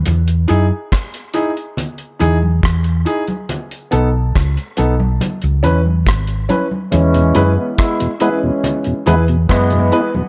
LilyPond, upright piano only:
\new Staff \with { instrumentName = "Upright piano" } { \time 4/4 \key e \major \tempo 4 = 70 r8 <dis' e' gis'>16 r8. <dis' e' gis'>16 r8. <dis' e' gis'>16 r8. <dis' e' gis'>16 r16 | r8 <b dis' a'>16 r8. <b dis' a'>16 r8. <cis' e' b'>16 r8. <cis' e' b'>16 r16 | r8 <e' gis' b'>16 r8. <e' gis' b'>16 r8. <e' gis' b'>16 r8. <e' gis' b'>16 <gis' b'>16 | }